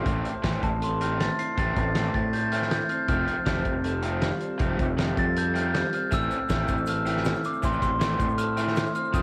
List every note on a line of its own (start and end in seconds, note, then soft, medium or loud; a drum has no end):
0.04 0.22 A1 medium
0.04 1.00 A2 medium
0.04 0.30 E3 medium
0.04 0.30 A3 medium
0.04 0.30 C4 medium
0.04 kick loud
0.04 closed hi-hat medium
0.25 0.62 C4 medium
0.25 closed hi-hat medium
0.43 0.60 A1 medium
0.43 0.68 E3 medium
0.43 0.68 A3 medium
0.43 1.20 A3 medium
0.43 0.68 C4 medium
0.43 kick medium
0.43 snare loud
0.43 closed hi-hat medium
0.62 1.27 A1 medium
0.62 1.39 C4 medium
0.62 0.81 A5 medium
0.62 kick medium
0.62 closed hi-hat medium
0.81 2.33 A4 medium
0.81 1.01 C6 medium
0.81 closed hi-hat medium
1.01 1.26 E3 medium
1.01 1.25 A3 medium
1.01 1.25 C4 medium
1.01 1.96 E4 medium
1.01 1.20 F6 medium
1.01 closed hi-hat medium
1.20 1.95 A3 medium
1.20 1.38 A6 medium
1.20 snare loud
1.20 closed hi-hat medium
1.39 1.76 C4 medium
1.39 1.57 C7 medium
1.39 closed hi-hat medium
1.58 1.74 A1 medium
1.58 2.53 A2 medium
1.58 1.82 E3 medium
1.58 1.83 A3 medium
1.58 1.83 C4 loud
1.58 1.95 A6 medium
1.58 kick loud
1.58 closed hi-hat medium
1.76 2.09 A1 medium
1.76 2.14 C4 medium
1.76 kick medium
1.76 closed hi-hat medium
1.95 2.20 E3 medium
1.95 2.72 A3 medium
1.95 2.20 A3 loud
1.95 2.21 C4 loud
1.95 snare loud
1.95 closed hi-hat medium
2.14 2.79 A2 medium
2.14 2.91 C4 medium
2.14 2.33 A6 loud
2.14 kick medium
2.14 closed hi-hat medium
2.33 3.50 A4 medium
2.33 2.52 G6 medium
2.33 closed hi-hat medium
2.52 2.78 E3 medium
2.52 2.77 A3 medium
2.52 2.77 C4 loud
2.52 3.10 E4 medium
2.52 2.71 F6 medium
2.52 closed hi-hat medium
2.62 snare soft
2.71 3.47 A3 medium
2.71 2.90 G6 medium
2.71 snare loud
2.71 closed hi-hat medium
2.89 3.27 C4 medium
2.89 3.07 F6 medium
2.89 closed hi-hat medium
3.08 3.25 F1 loud
3.08 4.04 F3 medium
3.08 3.34 F3 medium
3.08 3.34 A3 medium
3.08 3.34 C4 loud
3.08 3.46 F6 loud
3.08 kick loud
3.08 closed hi-hat medium
3.27 3.65 C4 medium
3.27 closed hi-hat medium
3.46 3.63 F1 medium
3.46 3.71 F3 medium
3.46 4.22 G3 medium
3.46 3.72 A3 medium
3.46 3.72 C4 loud
3.46 kick medium
3.46 snare loud
3.46 closed hi-hat medium
3.65 4.31 F1 medium
3.65 4.41 C4 medium
3.65 kick medium
3.65 closed hi-hat medium
3.84 5.00 A4 medium
3.84 closed hi-hat loud
4.03 4.28 F3 medium
4.03 4.28 A3 medium
4.03 4.28 C4 medium
4.03 4.99 F4 medium
4.03 closed hi-hat medium
4.22 4.96 G3 medium
4.22 snare loud
4.22 closed hi-hat medium
4.41 4.78 C4 medium
4.41 closed hi-hat medium
4.58 4.77 F1 medium
4.58 4.84 F3 medium
4.58 5.55 F3 medium
4.58 4.85 A3 medium
4.58 4.85 C4 medium
4.58 kick loud
4.58 closed hi-hat medium
4.79 5.12 F1 medium
4.79 5.16 C4 medium
4.79 kick medium
4.79 closed hi-hat medium
4.97 5.23 F3 medium
4.97 5.73 G3 medium
4.97 5.23 A3 loud
4.97 5.23 C4 loud
4.97 snare loud
4.97 closed hi-hat medium
5.16 5.82 F2 medium
5.16 5.92 C4 medium
5.16 5.37 A6 loud
5.16 kick medium
5.16 closed hi-hat medium
5.36 6.88 A4 medium
5.36 5.56 G6 medium
5.36 closed hi-hat medium
5.54 5.80 F3 medium
5.54 5.80 A3 medium
5.54 5.79 C4 medium
5.54 6.12 F4 medium
5.54 5.74 F6 medium
5.54 closed hi-hat medium
5.74 6.12 G3 medium
5.74 5.93 G6 medium
5.74 snare loud
5.74 closed hi-hat medium
5.92 6.30 C4 medium
5.92 6.12 F6 medium
5.92 closed hi-hat medium
6.11 6.28 A1 loud
6.11 7.07 A2 medium
6.11 6.36 E3 medium
6.11 6.37 A3 medium
6.11 6.37 C4 loud
6.11 6.50 E6 loud
6.11 kick loud
6.11 closed hi-hat medium
6.11 shaker medium
6.21 shaker soft
6.31 6.69 C4 medium
6.31 closed hi-hat medium
6.31 shaker medium
6.49 6.66 A1 medium
6.49 6.74 E3 medium
6.49 6.74 A3 medium
6.49 7.25 A3 medium
6.49 6.75 C4 loud
6.49 kick medium
6.49 snare loud
6.49 closed hi-hat medium
6.49 shaker medium
6.68 7.34 A1 medium
6.68 7.45 C4 medium
6.68 kick medium
6.68 closed hi-hat medium
6.68 shaker medium
6.78 shaker soft
6.86 8.39 A4 medium
6.86 7.44 F6 loud
6.86 closed hi-hat medium
6.86 shaker medium
7.06 7.31 E3 medium
7.06 7.31 A3 medium
7.06 7.31 C4 medium
7.06 8.01 E4 medium
7.06 closed hi-hat medium
7.06 shaker medium
7.17 snare soft
7.25 8.02 A3 medium
7.25 snare loud
7.25 closed hi-hat medium
7.25 shaker loud
7.35 shaker soft
7.44 7.82 C4 medium
7.44 7.64 D6 medium
7.44 closed hi-hat medium
7.44 shaker medium
7.54 shaker soft
7.63 7.80 A1 loud
7.63 8.58 A2 medium
7.63 7.88 E3 medium
7.63 7.88 A3 loud
7.63 7.88 C4 medium
7.63 7.81 C6 medium
7.63 kick loud
7.63 closed hi-hat medium
7.63 shaker loud
7.73 shaker soft
7.82 8.14 A1 medium
7.82 8.20 C4 medium
7.82 8.19 C6 loud
7.82 kick medium
7.82 closed hi-hat medium
7.82 shaker medium
8.00 8.25 E3 medium
8.00 8.26 A3 medium
8.00 8.77 A3 medium
8.00 8.26 C4 loud
8.00 snare loud
8.00 closed hi-hat medium
8.00 shaker medium
8.19 8.84 A2 medium
8.19 8.95 C4 medium
8.19 kick medium
8.19 closed hi-hat medium
8.19 shaker medium
8.29 shaker soft
8.38 9.22 A4 medium
8.38 8.93 F6 loud
8.38 closed hi-hat medium
8.38 shaker loud
8.57 8.83 E3 medium
8.57 8.82 A3 medium
8.57 8.82 C4 loud
8.57 9.14 E4 medium
8.57 closed hi-hat medium
8.57 shaker medium
8.67 snare soft
8.76 9.22 A3 medium
8.76 snare loud
8.76 closed hi-hat medium
8.76 shaker loud
8.86 shaker soft
8.95 9.22 C4 medium
8.95 9.14 F6 loud
8.95 closed hi-hat medium
8.95 shaker medium
9.05 shaker soft
9.13 9.22 F1 loud
9.13 9.22 F3 medium
9.13 9.22 A3 medium
9.13 9.22 C4 loud
9.13 9.22 D#6 medium
9.13 kick loud
9.13 closed hi-hat medium
9.13 shaker loud